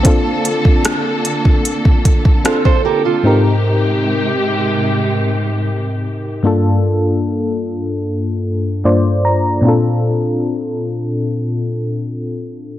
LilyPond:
<<
  \new Staff \with { instrumentName = "Steel-string acoustic guitar" } { \time 4/4 \key bes \major \tempo 4 = 75 r2. <f' a'>16 <a' c''>16 <g' bes'>16 <f' a'>16~ | <f' a'>16 r2. r8. | r1 | r1 | }
  \new Staff \with { instrumentName = "FM electric piano" } { \time 4/4 \key bes \major << { r1 | r1 | r2. d''8 bes''8 | r1 | } \\ { <c' d' f' a'>2. <c' d' f' a'>4 | <aes, c' ees' g' bes'>1 | <g, bes d' f' a'>2. <g, bes d' f' c''>4 | <bes, c' d' f' a'>1 | } >> }
  \new Staff \with { instrumentName = "String section" } { \time 4/4 \key bes \major <d bes a'>1 | <c aes g'>1 | r1 | r1 | }
  \new DrumStaff \with { instrumentName = "Drums" } \drummode { \time 4/4 <hh bd>8 hh16 bd16 <hh ss>8 hh16 bd16 hh16 bd16 <hh bd>16 bd16 <hh ss>16 bd8. | r4 r4 r4 r4 | r4 r4 r4 r4 | r4 r4 r4 r4 | }
>>